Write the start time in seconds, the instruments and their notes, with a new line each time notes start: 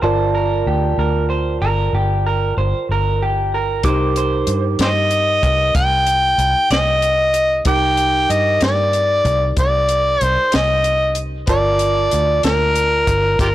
0.02 fingered electric bass G1, tine electric piano F4 A#4 D5 A5, clean electric guitar C5
0.35 clean electric guitar A#4
0.66 fingered electric bass D2, clean electric guitar G4
0.98 fingered electric bass D2, clean electric guitar A#4
1.30 clean electric guitar C5
1.62 fingered electric bass G1, clean electric guitar A#4
1.93 fingered electric bass G1, clean electric guitar G4
2.26 clean electric guitar A#4
2.57 fingered electric bass G1, clean electric guitar C5
2.89 fingered electric bass G1, clean electric guitar A#4
3.22 clean electric guitar G4
3.54 clean electric guitar A#4
3.83 fingered electric bass C2, tine electric piano D#4 G4 A#4 D6, kick, closed hi-hat
3.88 clean electric guitar C5
4.16 clean electric guitar C5, closed hi-hat
4.47 fingered electric bass G2, closed hi-hat
4.79 fingered electric bass G2, harmonica G4 C5 D#5, snare, closed hi-hat
5.11 closed hi-hat
5.43 fingered electric bass C2, kick, closed hi-hat
5.75 fingered electric bass C2, harmonica G5, kick, closed hi-hat
6.07 closed hi-hat
6.38 fingered electric bass C2, closed hi-hat
6.70 fingered electric bass C2, harmonica D#5, snare, closed hi-hat
7.02 closed hi-hat
7.34 closed hi-hat
7.65 fingered electric bass C2, tine electric piano D#4 G4 A#4 D6, harmonica G5, kick, closed hi-hat
7.97 closed hi-hat
8.30 fingered electric bass G2, harmonica D#5, closed hi-hat
8.61 fingered electric bass G2, harmonica D5, snare, closed hi-hat
8.93 closed hi-hat
9.25 fingered electric bass C2, kick, closed hi-hat
9.57 fingered electric bass C2, harmonica D5, kick, closed hi-hat
9.89 closed hi-hat
10.21 fingered electric bass C2, harmonica C5, closed hi-hat
10.52 fingered electric bass C2, harmonica D#5, snare, closed hi-hat
10.84 closed hi-hat
11.15 closed hi-hat
11.47 fingered electric bass G1, tine electric piano F4 A#4 D5 A5, harmonica D5, kick, closed hi-hat
11.79 closed hi-hat
12.11 fingered electric bass D2, closed hi-hat
12.43 fingered electric bass D2, harmonica A#4, snare, closed hi-hat
12.75 closed hi-hat
13.07 fingered electric bass G1, kick, closed hi-hat
13.39 fingered electric bass G1, harmonica F4 G4 A#4, kick, closed hi-hat